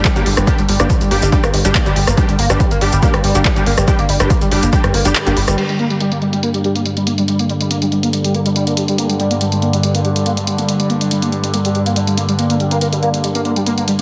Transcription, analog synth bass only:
0.16 G1
0.26 G1
0.37 G1
0.58 G1
0.69 G1
0.80 G1
1.01 G1
1.11 G1
1.22 G1
1.44 G1
1.54 G1
1.65 G1
1.86 G1
1.96 G1
2.07 G1
2.29 G1
2.39 G1
2.50 G1
2.71 G1
2.81 G1
2.93 G1
3.14 G1
3.24 G1
3.35 G1
3.56 G1
3.66 G1
3.78 G1
3.99 G1
4.09 G1
4.20 G1
4.41 G1
4.52 G1
4.63 G1
4.84 G2
4.94 G1
5.05 G1
5.27 G1
5.37 G1
5.48 G1

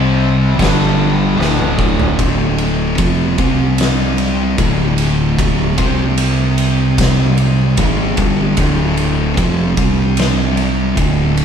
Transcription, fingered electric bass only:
Already playing: C2
0.59 G1
1.39 D1
2.19 D1
2.99 F1
3.39 C2
4.58 D1
5.78 C2
7.78 G#1
8.18 G1
8.58 D1
9.37 F1
9.78 C2
10.97 D1

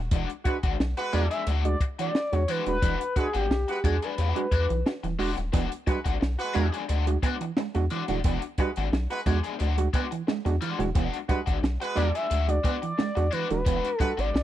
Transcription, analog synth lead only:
1.14 D5
1.31 E5
1.65 D5
2.00 D5
2.34 C#5
2.49 B4
2.68 B4
3.17 G#4
3.36 G4
3.86 G#4
4.04 B4
11.96 D5
12.15 E5
12.49 D5
12.83 D5
13.32 B4
13.51 B4
13.99 A4
14.20 D5

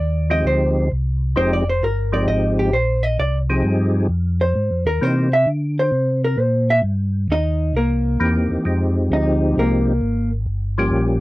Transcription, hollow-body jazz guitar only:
Already playing: D5
0.31 D#5
0.47 C5
1.37 C5
1.53 D5
1.70 C5
1.84 A#4
2.14 D5
2.28 D#5
2.59 G4
2.73 C5
3.03 D#5
3.19 D5
4.41 C5
4.87 A#4
5.03 C5
5.33 E5
5.79 C5
6.24 A#4
6.40 C5
6.70 E5
7.32 D#4 D#5
7.76 A#3 A#4
9.13 D#4 D#5
9.59 A#3 A#4

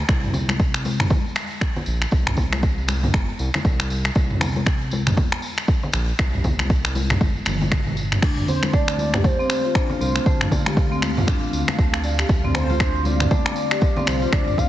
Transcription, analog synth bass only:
0.09 C2
1.87 A#1
2.12 C2
3.14 G1
3.39 C2
3.65 C2
4.16 C2
5.94 A#1
6.19 C2
7.21 G1
7.46 G1
8.22 D2
10.01 C2
10.26 D2
11.28 A1
11.53 D2
11.78 D2
12.29 D2
14.07 C2
14.33 D2

